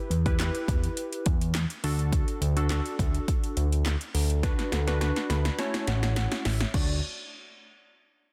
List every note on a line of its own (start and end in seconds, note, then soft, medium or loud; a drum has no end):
0.00 0.13 E4 medium
0.00 0.13 G4 medium
0.00 0.13 B4 loud
0.10 0.50 E2 loud
0.10 closed hi-hat medium
0.26 0.37 E4 medium
0.26 0.37 G4 medium
0.26 0.37 B4 loud
0.26 kick loud
0.26 closed hi-hat medium
0.39 1.36 E4 medium
0.39 1.36 G4 medium
0.39 1.36 B4 loud
0.39 snare medium
0.39 clap loud
0.39 closed hi-hat loud
0.55 closed hi-hat medium
0.68 0.88 E2 loud
0.68 kick loud
0.68 closed hi-hat medium
0.84 closed hi-hat medium
0.97 closed hi-hat medium
1.13 closed hi-hat medium
1.26 1.66 E2 loud
1.26 kick loud
1.26 closed hi-hat medium
1.41 closed hi-hat medium
1.55 snare loud
1.55 clap loud
1.55 closed hi-hat loud
1.70 closed hi-hat medium
1.84 2.23 D2 loud
1.84 2.44 D4 loud
1.84 2.44 F#4 medium
1.84 2.44 A4 loud
1.84 open hi-hat medium
1.99 closed hi-hat medium
2.13 kick loud
2.13 closed hi-hat loud
2.28 closed hi-hat medium
2.41 2.81 D2 loud
2.41 closed hi-hat medium
2.57 2.68 D4 medium
2.57 2.68 F#4 medium
2.57 2.68 A4 loud
2.57 closed hi-hat medium
2.70 3.67 D4 loud
2.70 3.67 F#4 medium
2.70 3.67 A4 loud
2.70 snare medium
2.70 clap loud
2.70 closed hi-hat loud
2.86 closed hi-hat medium
2.99 3.19 D2 loud
2.99 kick medium
2.99 closed hi-hat medium
3.15 closed hi-hat medium
3.28 kick loud
3.28 closed hi-hat medium
3.44 closed hi-hat soft
3.57 3.96 D2 medium
3.57 closed hi-hat medium
3.72 closed hi-hat medium
3.86 snare loud
3.86 clap loud
3.86 closed hi-hat loud
4.01 closed hi-hat medium
4.14 4.54 D2 loud
4.14 open hi-hat medium
4.30 closed hi-hat medium
4.43 4.80 D4 loud
4.43 4.80 F#4 medium
4.43 4.80 B4 loud
4.43 kick loud
4.43 snare medium
4.43 closed hi-hat loud
4.59 snare medium
4.59 closed hi-hat medium
4.72 5.12 D2 loud
4.72 snare medium
4.72 closed hi-hat medium
4.87 4.99 D4 medium
4.87 4.99 F#4 medium
4.87 4.99 B4 loud
4.87 snare medium
4.87 closed hi-hat medium
5.01 5.59 D4 loud
5.01 5.58 F#4 medium
5.01 5.59 B4 loud
5.01 snare medium
5.01 closed hi-hat loud
5.16 snare medium
5.16 closed hi-hat medium
5.30 5.50 D2 medium
5.30 5.57 B5 medium
5.30 snare medium
5.30 closed hi-hat medium
5.45 snare medium
5.45 closed hi-hat medium
5.58 6.55 A3 loud
5.58 6.56 C#4 medium
5.58 6.56 E4 medium
5.58 6.56 F#4 medium
5.58 6.56 C#5 loud
5.58 5.85 A5 medium
5.58 snare loud
5.58 closed hi-hat medium
5.74 snare medium
5.74 closed hi-hat soft
5.87 6.27 A1 loud
5.87 6.14 F#5 medium
5.87 snare loud
5.87 closed hi-hat medium
6.03 snare medium
6.03 closed hi-hat medium
6.16 6.43 F#5 medium
6.16 snare loud
6.16 closed hi-hat loud
6.32 snare loud
6.32 closed hi-hat medium
6.45 6.65 A1 loud
6.45 6.72 E5 medium
6.45 snare loud
6.45 open hi-hat medium
6.60 snare loud
6.60 closed hi-hat medium
6.74 7.01 D2 loud
6.74 7.01 A3 medium
6.74 7.01 D4 medium
6.74 7.01 F#4 medium
6.74 7.01 D5 medium
6.74 kick loud
6.74 crash medium